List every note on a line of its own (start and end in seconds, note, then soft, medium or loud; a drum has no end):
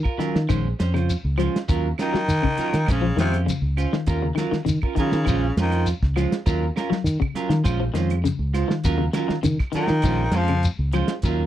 0.03 0.18 F4 soft
0.03 0.18 A#4 medium
0.03 kick medium
0.03 claves medium
0.18 0.36 D#3 medium
0.18 0.37 F#3 medium
0.18 0.37 C#4 medium
0.18 0.38 F4 medium
0.18 0.38 A#4 medium
0.18 muted fingered electric bass stroke soft
0.18 snare soft
0.18 closed hi-hat soft
0.18 shekere soft
0.35 0.46 D#3 medium
0.35 snare medium
0.49 0.72 A#1 medium
0.49 0.66 D#3 medium
0.49 0.67 G#3 medium
0.49 0.67 C#4 medium
0.49 0.68 C5 medium
0.49 muted clean electric guitar stroke medium
0.49 kick medium
0.49 closed hi-hat medium
0.49 claves medium
0.49 shekere medium
0.79 1.14 F2 medium
0.79 0.94 C#4 medium
0.79 0.93 C5 medium
0.79 muted clean electric guitar stroke medium
0.79 snare medium
0.79 closed hi-hat soft
0.79 shekere soft
0.94 1.11 C#3 medium
0.94 1.12 C#4 medium
0.94 1.12 F4 medium
0.94 1.12 C5 medium
0.94 snare soft
0.94 closed hi-hat soft
0.94 claves medium
1.09 closed hi-hat medium
1.09 shekere medium
1.25 1.47 C#2 medium
1.38 1.55 F3 medium
1.38 1.57 G#3 medium
1.38 1.57 C#4 medium
1.38 1.57 F4 medium
1.38 1.57 C5 medium
1.38 closed hi-hat medium
1.38 claves medium
1.38 shekere soft
1.56 snare medium
1.56 closed hi-hat medium
1.68 1.92 D#2 loud
1.68 1.87 F#3 medium
1.68 1.87 C#4 medium
1.68 1.87 F4 medium
1.68 1.87 A#4 medium
1.68 kick loud
1.68 closed hi-hat medium
1.68 shekere medium
1.98 2.92 D#3 loud
1.98 2.17 F#3 medium
1.98 2.17 C#4 medium
1.98 2.17 F4 medium
1.98 2.17 A#4 medium
1.98 snare medium
1.98 closed hi-hat soft
1.98 claves medium
1.98 shekere soft
2.13 2.30 F#3 medium
2.13 muted fingered electric bass stroke soft
2.13 snare medium
2.28 2.40 D#3 loud
2.28 closed hi-hat medium
2.28 shekere medium
2.42 2.60 C#3 medium
2.42 kick medium
2.42 claves medium
2.57 2.76 F#3 medium
2.57 2.76 C#4 medium
2.57 2.76 F4 medium
2.57 2.77 A#4 medium
2.57 muted fingered electric bass stroke soft
2.57 closed hi-hat medium
2.57 shekere soft
2.74 2.85 D#3 medium
2.74 snare medium
2.74 closed hi-hat medium
2.86 3.11 A#1 medium
2.86 3.06 G#3 medium
2.86 3.06 C#4 medium
2.86 3.06 C5 medium
2.86 muted clean electric guitar stroke medium
2.86 kick medium
2.86 snare soft
2.86 closed hi-hat medium
2.86 claves medium
2.86 shekere medium
2.91 3.19 C#3 medium
3.02 3.10 F3 medium
3.16 3.52 F2 medium
3.16 3.37 C3 loud
3.16 3.33 D#3 medium
3.16 3.33 G#3 medium
3.16 3.34 C#4 medium
3.16 3.33 F4 medium
3.16 3.32 C5 medium
3.16 snare medium
3.16 closed hi-hat medium
3.16 shekere soft
3.32 3.51 C#4 soft
3.32 3.51 F4 soft
3.32 3.51 C5 soft
3.32 closed hi-hat medium
3.32 claves medium
3.46 3.63 C#3 medium
3.46 snare soft
3.46 closed hi-hat medium
3.46 shekere medium
3.62 3.85 C#2 medium
3.77 3.96 C#4 medium
3.77 3.96 F4 medium
3.77 3.96 C5 medium
3.77 muted clean electric guitar stroke medium
3.77 closed hi-hat soft
3.77 claves medium
3.77 shekere soft
3.93 4.10 D#3 medium
3.93 snare medium
4.06 4.30 D#2 medium
4.06 4.26 C#4 medium
4.06 4.26 F4 medium
4.06 4.26 A#4 loud
4.06 muted clean electric guitar stroke medium
4.06 kick medium
4.06 closed hi-hat medium
4.06 shekere medium
4.22 4.30 C#3 medium
4.35 4.44 D#3 medium
4.35 4.56 F#3 medium
4.35 4.56 C#4 medium
4.35 4.56 F4 medium
4.35 4.56 A#4 medium
4.35 snare medium
4.35 closed hi-hat medium
4.35 claves medium
4.35 shekere soft
4.51 4.60 D#3 medium
4.51 muted fingered electric bass stroke soft
4.51 snare medium
4.65 4.82 C#3 medium
4.65 4.78 D#3 medium
4.65 closed hi-hat medium
4.65 shekere medium
4.82 4.97 C#4 soft
4.82 4.97 F4 soft
4.82 4.97 A#4 medium
4.82 kick medium
4.82 claves medium
4.95 5.12 D#3 medium
4.95 5.16 F#3 medium
4.95 5.16 C#4 medium
4.95 5.16 F4 medium
4.95 5.16 A#4 medium
4.95 muted fingered electric bass stroke soft
4.95 kick medium
4.95 closed hi-hat medium
4.95 shekere soft
4.99 5.54 C#3 medium
5.12 5.24 D#3 medium
5.12 snare medium
5.25 5.50 A#1 loud
5.25 5.42 D#3 medium
5.25 5.46 G#3 medium
5.25 5.46 C#4 medium
5.25 5.46 F4 medium
5.25 5.46 C5 medium
5.25 kick medium
5.25 closed hi-hat medium
5.25 claves medium
5.25 shekere medium
5.57 5.92 F2 medium
5.57 5.86 D#3 medium
5.57 5.72 G#3 soft
5.57 5.72 C#4 medium
5.57 5.71 F4 medium
5.57 5.70 C5 medium
5.57 snare medium
5.57 closed hi-hat medium
5.57 shekere soft
5.71 5.90 C#4 soft
5.71 5.90 F4 medium
5.71 5.89 C5 soft
5.71 closed hi-hat soft
5.71 claves medium
5.86 closed hi-hat medium
5.86 shekere medium
6.02 6.25 C#2 medium
6.02 kick medium
6.02 snare soft
6.16 6.33 F3 medium
6.16 6.35 G#3 medium
6.16 6.35 C#4 medium
6.16 6.35 F4 medium
6.16 6.35 C5 medium
6.16 closed hi-hat soft
6.16 claves medium
6.16 shekere soft
6.32 snare medium
6.32 closed hi-hat soft
6.46 6.69 D#2 medium
6.46 6.64 F#3 medium
6.46 6.65 C#4 medium
6.46 6.65 F4 medium
6.46 6.64 A#4 medium
6.46 kick medium
6.46 closed hi-hat medium
6.46 shekere medium
6.76 6.94 C#4 medium
6.76 6.95 F4 medium
6.76 6.95 A#4 medium
6.76 muted clean electric guitar stroke medium
6.76 snare medium
6.76 closed hi-hat soft
6.76 claves medium
6.76 shekere soft
6.90 7.07 F#3 medium
6.90 muted fingered electric bass stroke soft
6.90 snare medium
7.04 7.17 D#3 loud
7.04 closed hi-hat medium
7.04 shekere medium
7.20 7.37 C#3 medium
7.20 kick medium
7.20 claves medium
7.34 7.54 F#3 medium
7.34 7.54 C#4 medium
7.34 7.54 F4 medium
7.34 7.54 A#4 medium
7.34 muted fingered electric bass stroke soft
7.34 snare soft
7.34 closed hi-hat medium
7.34 shekere soft
7.49 7.67 D#3 medium
7.49 7.61 D#3 medium
7.49 snare medium
7.49 closed hi-hat medium
7.64 7.88 A#1 loud
7.64 7.83 G#3 medium
7.64 7.83 C#4 medium
7.64 7.83 F4 medium
7.64 7.83 C5 medium
7.64 kick medium
7.64 closed hi-hat medium
7.64 claves medium
7.64 shekere medium
7.80 7.88 F3 medium
7.94 8.29 F2 medium
7.94 8.11 D#3 medium
7.94 8.13 G#3 medium
7.94 8.13 C#4 medium
7.94 8.14 F4 medium
7.94 8.14 C5 medium
7.94 snare medium
7.94 closed hi-hat medium
7.94 shekere soft
8.10 closed hi-hat medium
8.10 claves medium
8.24 8.41 C#3 medium
8.24 snare soft
8.24 closed hi-hat medium
8.24 shekere medium
8.39 8.63 C#2 medium
8.53 8.73 G#3 medium
8.53 8.73 F4 medium
8.53 8.73 C5 medium
8.53 closed hi-hat medium
8.53 claves medium
8.53 shekere soft
8.68 8.86 D#3 medium
8.68 snare medium
8.84 9.08 D#2 medium
8.84 9.03 F#3 medium
8.84 9.03 C#4 medium
8.84 9.03 F4 medium
8.84 9.04 A#4 medium
8.84 kick medium
8.84 closed hi-hat medium
8.84 shekere medium
8.98 9.07 C#3 medium
9.13 9.23 D#3 medium
9.13 9.33 F#3 medium
9.13 9.33 C#4 medium
9.13 9.33 F4 medium
9.13 9.33 A#4 medium
9.13 snare medium
9.13 closed hi-hat soft
9.13 claves medium
9.13 shekere soft
9.28 9.37 D#3 medium
9.28 muted fingered electric bass stroke soft
9.28 snare medium
9.43 9.60 C#3 medium
9.43 9.56 D#3 medium
9.43 snare soft
9.43 closed hi-hat medium
9.43 shekere medium
9.59 kick medium
9.59 snare soft
9.59 claves medium
9.72 9.89 D#3 medium
9.72 10.38 D#3 medium
9.72 9.93 F#3 medium
9.72 9.93 C#4 medium
9.72 9.93 F4 medium
9.72 9.94 A#4 medium
9.72 muted fingered electric bass stroke soft
9.72 closed hi-hat medium
9.72 shekere soft
9.88 10.01 D#3 medium
9.88 snare medium
10.02 10.27 A#1 loud
10.02 10.21 D#3 medium
10.02 10.23 G#3 medium
10.02 10.23 C#4 medium
10.02 10.23 F4 medium
10.02 10.23 C5 medium
10.02 kick medium
10.02 snare soft
10.02 closed hi-hat medium
10.02 claves medium
10.02 shekere medium
10.31 10.67 F2 medium
10.31 10.52 G#3 medium
10.31 10.53 C#4 medium
10.31 10.53 F4 medium
10.31 10.53 C5 medium
10.31 snare medium
10.31 closed hi-hat soft
10.36 10.65 F3 medium
10.36 shekere soft
10.48 10.66 C#3 medium
10.48 closed hi-hat soft
10.48 claves medium
10.63 closed hi-hat medium
10.63 shekere medium
10.79 11.02 C#2 medium
10.92 11.10 F3 medium
10.92 11.12 G#3 medium
10.92 11.13 C#4 medium
10.92 11.13 F4 medium
10.92 11.13 C5 medium
10.92 closed hi-hat soft
10.92 claves medium
10.92 shekere soft
11.08 snare medium
11.08 closed hi-hat medium
11.22 11.46 D#2 loud
11.22 11.43 F#3 medium
11.22 11.43 C#4 medium
11.22 11.43 F4 medium
11.22 11.43 A#4 loud
11.22 kick loud
11.22 closed hi-hat medium
11.22 shekere medium